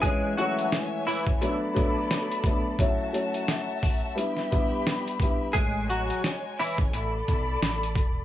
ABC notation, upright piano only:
X:1
M:4/4
L:1/8
Q:"Swing 16ths" 1/4=87
K:A
V:1 name="Upright piano"
[E,G,C] [E,G,A,C]3 [F,A,B,D] [F,A,B,D]2 [F,A,B,D] | [F,A,CE] [F,A,CE]3 [=G,B,DE] [G,B,DE]2 [G,B,DE] | z8 |]